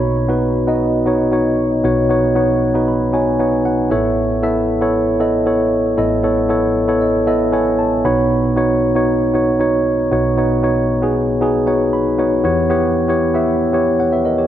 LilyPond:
<<
  \new Staff \with { instrumentName = "Tine electric piano" } { \time 4/4 \key b \major \tempo 4 = 116 << { r1 | r4. b''8 gis''4 fis''8 e''8 | r1 | r4. dis''8 e''8 gis''8 a''8 b''8 |
r1 | r2 r8 fis''8 b''4 | r2. <cis'' fis''>16 <b' e''>16 <ais' dis''>16 <g' cis''>16 | } \\ { <b dis' fis' cis''>16 r16 <b dis' fis' b'>8 r16 <b dis' fis' dis''>8 r16 <b dis' fis' cis''>8 <b dis' fis' cis''>8. r16 <b dis' fis' cis''>8 | <b dis' fis' cis''>8 <b dis' fis' cis''>8 r16 <b dis' fis' b'>8 r16 <b dis' fis' cis''>8 <b dis' fis' cis''>8. r16 <b e' a' cis''>8~ | <b e' a' cis''>16 r16 <b e' a' e''>8 r16 <b e' a' cis''>8 r16 <b e' a' dis''>8 <b e' a' cis''>8. r16 <b e' a' dis''>8 | <b e' a' cis''>8 <b e' a' cis''>8 r16 <b e' a' cis''>8 r16 <b e' a' dis''>8 <b e' a' cis''>8. r16 <b dis' fis' cis''>8~ |
<b dis' fis' cis''>16 r16 <b dis' fis' cis''>8 r16 <b dis' fis' cis''>8 r16 <b dis' fis' cis''>8 <b dis' fis' cis''>8. r16 <b dis' fis' cis''>8 | <b dis' fis' cis''>8 <b dis' fis' cis''>8 r16 <b dis' fis' gis'>8 r16 <b dis' fis' gis'>8 <b dis' fis' cis''>8. r16 <b dis' fis' cis''>8 | <b e' g' cis''>8 <b e' g' cis''>8 r16 <b e' g' cis''>8 <b e' g' e''>8 r16 <b e' g' cis''>8 r4 | } >> }
  \new Staff \with { instrumentName = "Tine electric piano" } { \clef bass \time 4/4 \key b \major <b,, b,>2.~ <b,, b,>8 <b,, b,>8~ | <b,, b,>2.~ <b,, b,>8 <a,, a,>8~ | <a,, a,>2.~ <a,, a,>8 <a,, a,>8~ | <a,, a,>2.~ <a,, a,>8 <b,, b,>8~ |
<b,, b,>2.~ <b,, b,>8 <b,, b,>8~ | <b,, b,>2.~ <b,, b,>8 r8 | <e, e>1 | }
>>